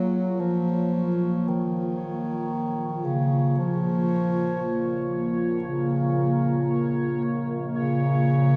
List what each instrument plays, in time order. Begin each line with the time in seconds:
Already playing: synth drone A#1, bass clarinet F#3, analog synth pad A#3 F4 G#4, synth texture C#5
0.40 bass clarinet F3
1.48 bass clarinet D#3
3.04 bass clarinet C#3
3.32 analog synth pad A#4
3.58 bass clarinet F3
5.64 bass clarinet C#3
7.78 bass clarinet C#3